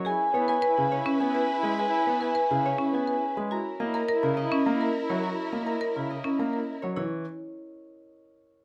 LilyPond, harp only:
\new Staff \with { instrumentName = "Harp" } { \time 3/4 \key fis \mixolydian \tempo 4 = 104 << { <cis'' gis''>8 cis''16 gis''8 gis'16 cis''8 gis''8. b'16 | gis''8 cis''16 gis''8 gis'16 cis''8 gis''8. b'16 | ais''8 dis''16 ais''8 ais'16 dis''8 ais''8. cis''16 | ais''8 dis''16 ais''8 ais'16 dis''8 ais''8. cis''16~ |
cis''2. | } \\ { r2. | r2. | r2. | r2. |
cis''8 r2 r8 | } >> }